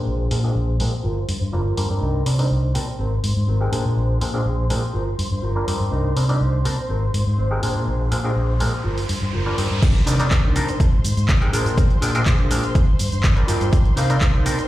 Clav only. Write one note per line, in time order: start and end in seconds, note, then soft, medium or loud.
0.00 0.28 G#3 medium
0.00 0.28 C4 medium
0.00 0.29 D4 medium
0.00 0.29 F4 medium
0.00 0.29 A#4 medium
0.31 0.39 G#3 medium
0.31 0.39 C4 medium
0.31 0.39 D4 medium
0.31 0.39 F4 medium
0.31 0.39 A#4 medium
0.44 0.51 G#3 loud
0.44 0.51 C4 medium
0.44 0.51 D4 medium
0.44 0.52 F4 medium
0.44 0.52 A#4 loud
0.80 0.93 G#3 medium
0.80 0.93 C4 medium
0.80 0.93 D4 medium
0.80 0.93 F4 medium
0.80 0.93 A#4 medium
1.53 1.61 G3 medium
1.53 1.61 A#3 medium
1.53 1.61 D4 medium
1.53 1.61 F4 medium
1.53 1.61 A#4 loud
1.77 1.88 G3 loud
1.77 1.88 A#3 medium
1.77 1.88 D4 medium
1.77 1.88 F4 medium
1.77 1.89 A#4 loud
1.90 2.23 G3 medium
1.90 2.24 C4 medium
1.90 2.24 D4 medium
1.90 2.24 D#4 medium
1.90 2.24 A#4 medium
2.26 2.34 G3 medium
2.26 2.34 C4 medium
2.26 2.34 D4 medium
2.26 2.34 D#4 medium
2.26 2.35 A#4 medium
2.38 2.46 G3 loud
2.38 2.46 C4 medium
2.38 2.46 D4 medium
2.38 2.46 D#4 medium
2.38 2.46 A#4 loud
2.75 2.88 G3 medium
2.75 2.88 C4 medium
2.75 2.88 D4 medium
2.75 2.88 D#4 medium
2.75 2.88 A#4 medium
3.61 3.71 G#3 medium
3.61 3.71 C4 medium
3.61 3.71 D#4 medium
3.61 3.71 G4 medium
3.61 3.71 A#4 loud
3.73 4.19 G#3 medium
3.73 4.19 C4 medium
3.73 4.19 D4 medium
3.73 4.19 F4 medium
3.73 4.19 A#4 medium
4.21 4.29 G#3 medium
4.21 4.29 C4 medium
4.21 4.29 D4 medium
4.21 4.29 F4 medium
4.21 4.30 A#4 medium
4.33 4.41 G#3 loud
4.33 4.41 C4 medium
4.33 4.41 D4 medium
4.33 4.41 F4 medium
4.33 4.42 A#4 loud
4.70 4.83 G#3 medium
4.70 4.83 C4 medium
4.70 4.83 D4 medium
4.70 4.83 F4 medium
4.70 4.83 A#4 medium
5.56 5.66 G3 medium
5.56 5.66 A#3 medium
5.56 5.66 D4 medium
5.56 5.66 F4 medium
5.56 5.66 A#4 loud
5.68 6.14 G3 medium
5.68 6.14 C4 medium
5.68 6.14 D4 medium
5.68 6.14 D#4 medium
5.68 6.14 A#4 medium
6.16 6.24 G3 medium
6.16 6.24 C4 medium
6.16 6.25 D4 medium
6.16 6.25 D#4 medium
6.16 6.25 A#4 medium
6.29 6.36 G3 medium
6.29 6.36 C4 medium
6.29 6.37 D4 medium
6.29 6.37 D#4 medium
6.29 6.37 A#4 loud
6.65 6.78 G3 medium
6.65 6.78 C4 medium
6.65 6.78 D4 medium
6.65 6.78 D#4 medium
6.65 6.78 A#4 medium
7.51 7.61 G#3 loud
7.51 7.61 C4 medium
7.51 7.61 D#4 medium
7.51 7.61 G4 medium
7.51 7.61 A#4 loud
7.62 8.09 G#3 medium
7.62 8.09 C4 medium
7.62 8.09 D4 medium
7.62 8.09 F4 medium
7.62 8.09 A#4 medium
8.11 8.19 G#3 medium
8.11 8.20 C4 medium
8.11 8.20 D4 medium
8.11 8.20 F4 medium
8.11 8.20 A#4 medium
8.24 8.32 G#3 loud
8.24 8.32 C4 medium
8.24 8.32 D4 medium
8.24 8.32 F4 medium
8.24 8.32 A#4 loud
8.60 8.73 G#3 medium
8.60 8.73 C4 medium
8.60 8.73 D4 medium
8.60 8.73 F4 medium
8.60 8.73 A#4 loud
9.46 9.56 G3 medium
9.46 9.56 A#3 medium
9.46 9.56 D4 medium
9.46 9.56 F4 medium
9.46 9.56 A#4 loud
9.58 10.04 G3 medium
9.58 10.04 C4 medium
9.58 10.04 D4 medium
9.58 10.04 D#4 medium
9.58 10.04 A#4 medium
10.06 10.14 G3 medium
10.06 10.15 C4 medium
10.06 10.15 D4 medium
10.06 10.15 D#4 medium
10.06 10.15 A#4 medium
10.19 10.27 G3 loud
10.19 10.27 C4 medium
10.19 10.27 D4 medium
10.19 10.27 D#4 loud
10.19 10.27 A#4 loud
10.55 10.68 G3 medium
10.55 10.68 C4 medium
10.55 10.68 D4 medium
10.55 10.69 D#4 medium
10.55 10.69 A#4 medium
11.41 11.51 G#3 loud
11.41 11.51 C4 medium
11.41 11.51 D#4 medium
11.41 11.51 G4 medium
11.41 11.52 A#4 loud
11.53 11.99 G#3 medium
11.53 11.99 C4 medium
11.53 11.99 D4 medium
11.53 11.99 F4 medium
11.53 11.99 A#4 loud
12.02 12.10 G#3 medium
12.02 12.10 C4 medium
12.02 12.10 D4 medium
12.02 12.10 F4 medium
12.02 12.10 A#4 medium
12.15 12.22 G#3 loud
12.15 12.22 C4 medium
12.15 12.22 D4 loud
12.15 12.22 F4 medium
12.15 12.22 A#4 loud
12.51 12.63 G#3 medium
12.51 12.63 C4 medium
12.51 12.64 D4 medium
12.51 12.64 F4 medium
12.51 12.64 A#4 loud
13.36 13.46 G3 loud
13.36 13.46 A#3 medium
13.36 13.46 D4 medium
13.36 13.47 F4 medium
13.36 13.47 A#4 loud
13.48 13.94 G3 medium
13.48 13.94 C4 medium
13.48 13.94 D4 medium
13.48 13.94 D#4 medium
13.48 13.95 A#4 loud
13.97 14.05 G3 medium
13.97 14.05 C4 medium
13.97 14.05 D4 medium
13.97 14.05 D#4 medium
13.97 14.05 A#4 medium
14.10 14.17 G3 loud
14.10 14.17 C4 loud
14.10 14.17 D4 loud
14.10 14.17 D#4 medium
14.10 14.17 A#4 loud
14.45 14.58 G3 medium
14.45 14.59 C4 medium
14.45 14.59 D4 medium
14.45 14.59 D#4 medium
14.45 14.59 A#4 loud